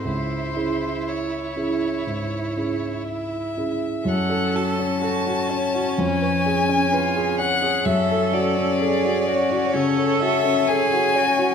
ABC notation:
X:1
M:4/4
L:1/16
Q:1/4=63
K:C#m
V:1 name="Violin"
^B4 c8 e4 | [K:F#m] f2 a6 g6 f2 | e2 d6 c2 e2 g4 |]
V:2 name="Cello"
E12- E2 z2 | [K:F#m] A4 F2 C6 ^E2 G2 | A4 G2 F2 A4 G2 F2 |]
V:3 name="Grand piano"
C,,2 [CEG]4 [CEG]2 G,,2 [CEG]4 [CEG]2 | [K:F#m] F,, A F C A F c F ^E,, B G C B G c G | F,, A F C A F c F C, A F C A F c F |]
V:4 name="Violin"
E16 | [K:F#m] C16 | C16 |]